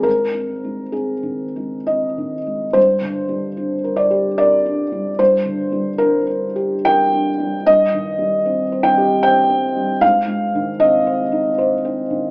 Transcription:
\new Staff \with { instrumentName = "Felt piano" } { \time 3/4 \key g \phrygian \tempo 4 = 74 << { bes'4 aes'4 ees''4 | c''4. d''8 d''4 | c''4 bes'4 g''4 | ees''4. g''8 g''4 |
f''4 ees''4 r4 | } \\ { \tuplet 3/2 { aes,8 c'8 aes8 c'8 ees8 aes8 c'8 ees8 aes8 } | \tuplet 3/2 { g,8 d8 g8 d'8 bes'8 g'8 bes'8 d'8 g8 } | \tuplet 3/2 { g,8 d8 g8 d'8 bes'8 g'8 bes'8 d'8 g8 } | \tuplet 3/2 { g,8 ees8 g8 c'8 c''8 g'8 c''8 c'8 g8 } |
\tuplet 3/2 { aes,8 aes8 ees8 c'8 c''8 ees'8 c''8 c'8 ees8 } | } >> }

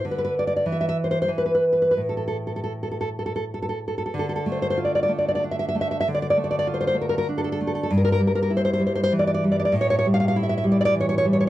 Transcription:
\new Staff \with { instrumentName = "Nylon-string guitar" } { \time 3/4 \key a \minor \tempo 4 = 96 << { r32 b'32 b'32 b'32 r32 d''32 d''32 d''32 r32 e''32 e''32 e''32 r32 c''32 c''32 c''32 r32 b'32 b'32 b'32 r32 b'32 b'32 b'32 | r32 a'32 a'32 a'32 r32 a'32 a'32 a'32 r32 a'32 a'32 a'32 r32 a'32 a'32 a'32 r32 a'32 a'32 a'32 r32 a'32 a'32 a'32 | \key d \minor r32 a'32 a'32 a'32 r32 c''32 c''32 c''32 r32 d''32 d''32 d''32 r32 d''32 d''32 d''32 r32 e''32 e''32 e''32 r32 e''32 e''32 e''32 | r32 d''32 d''32 d''32 r32 d''32 d''32 d''32 r32 c''32 c''32 c''32 r32 bes'32 bes'32 bes'32 r32 a'32 a'32 a'32 r32 a'32 a'32 a'32 |
r32 bes'32 bes'32 bes'32 r32 bes'32 bes'32 bes'32 r32 c''32 c''32 c''32 r32 c''32 c''32 c''32 r32 d''32 d''32 d''32 r32 d''32 d''32 d''32 | r32 cis''32 cis''32 cis''32 r32 f''32 f''32 f''32 r32 e''32 e''32 e''32 r32 d''32 d''32 d''32 r32 cis''32 cis''32 cis''32 r32 cis''32 cis''32 r32 | } \\ { d4 e4 e4 | a,2. | d8 a8 f'8 a8 d'8 a8 | d8 a8 f'8 a8 d'8 a8 |
g,8 g8 e'8 g8 e8 g8 | a,8 g8 e'8 g8 e8 g8 | } >> }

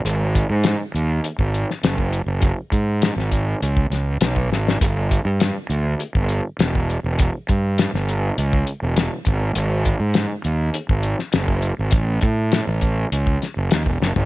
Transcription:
<<
  \new Staff \with { instrumentName = "Fingered electric bass" } { \clef bass \time 4/4 \key gis \phrygian \tempo 4 = 101 gis,,8. gis,8 r16 dis,8 r16 gis,,8 r16 fis,,8. fis,,16~ | fis,,16 r16 gis,8. gis,,8. cis,8 cis,8 b,,8 gis,,8 | g,,8. g,8 r16 d,8 r16 g,,8 r16 e,,8. e,,16~ | e,,16 r16 g,8. g,,8. cis,8 r16 e,,8 r16 gis,,8 |
gis,,8. gis,8 r16 dis,8 r16 gis,,8 r16 fis,,8. gis,,16 | a,,8 a,8. a,,8. cis,8 r16 fis,,16 dis,16 e,,16 fis,,16 gis,,16 | }
  \new DrumStaff \with { instrumentName = "Drums" } \drummode { \time 4/4 hh8 <hh bd>8 <hh sn>8 hh8 hh16 bd16 hh16 sn16 <hh sn>16 bd16 hh8 | <hh bd>8 <hh bd>8 <hh sn>16 sn16 <hh bd>8 hh16 bd16 <hh sn>8 <hh sn>16 bd16 sn16 sn16 | <hh bd>8 <hh bd>8 <hh sn>8 hh8 hh16 bd16 hh8 <hh sn>16 bd16 hh8 | <hh bd>8 <hh bd>8 <hh sn>16 sn16 hh8 hh16 bd16 hh8 <hh sn>8 <hh bd>8 |
hh8 <hh bd>8 <hh sn>8 hh8 hh16 bd16 hh16 sn16 <hh sn>16 bd16 hh8 | <hh bd>8 <hh bd>8 <hh sn>8 <hh bd>8 hh16 bd16 <hh sn>8 <hh sn>16 bd16 sn16 tomfh16 | }
>>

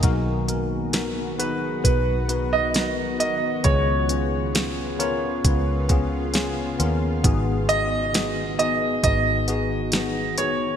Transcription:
<<
  \new Staff \with { instrumentName = "Grand piano" } { \time 4/4 \key ces \lydian \tempo 4 = 67 r4. b'8 b'8. dis''8. dis''8 | des''4. des''2 r8 | r8 ees''4 ees''8 ees''4. des''8 | }
  \new Staff \with { instrumentName = "Tine electric piano" } { \time 4/4 \key ces \lydian <b dis' fis' ais'>8 <b dis' fis' ais'>8 <b dis' fis' ais'>8 <b dis' fis' aes'>8 <b dis' fis' b'>8 <b dis' fis' b'>8 <b dis' fis' ais'>8 <b dis' fis' ais'>8 | <ces' des' f' aes'>8 <ces' des' f' aes'>8 <ces' des' f' aes'>8 <ces' des' f' bes'>8 <ces' des' f' ces''>8 <ces' des' f' aes'>8 <ces' des' f' aes'>8 <ces' des' f' bes'>8 | <ces' ees' ges' aes'>8 <ces' ees' ges' aes'>8 <ces' ees' ges' aes'>8 <ces' ees' ges' aes'>8 <ces' ees' ges' aes'>8 <ces' ees' ges' aes'>8 <ces' ees' ges' aes'>8 <ces' ees' ges' aes'>8 | }
  \new Staff \with { instrumentName = "Tine electric piano" } { \clef bass \time 4/4 \key ces \lydian b,4. r2 r8 | des4. r2 r8 | aes,4. r2 r8 | }
  \new Staff \with { instrumentName = "Ambient pad" } { \time 4/4 \key ces \lydian << { <dis fis fis'>1 | <des f'>1 | <ees ges'>1 | } \\ { b1 | ces'2 ces'2 | ces'1 | } >> }
  \new Staff \with { instrumentName = "Fingered electric bass" } { \clef bass \time 4/4 \key ces \lydian b,,2 b,,4. aes,,8 | des,2 des,4. ees,8 | aes,,2 aes,,4. f,,8 | }
  \new DrumStaff \with { instrumentName = "Drums" } \drummode { \time 4/4 <hh bd>8 hh8 <hh sn>8 hh8 <hh bd>8 hh8 <hh sn>8 hh8 | <hh bd>8 hh8 <hh sn>8 hh8 <hh bd>8 <hh bd>8 <hh sn>8 hh8 | <hh bd>8 hh8 <hh sn>8 hh8 <hh bd>8 hh8 <hh sn>8 hh8 | }
>>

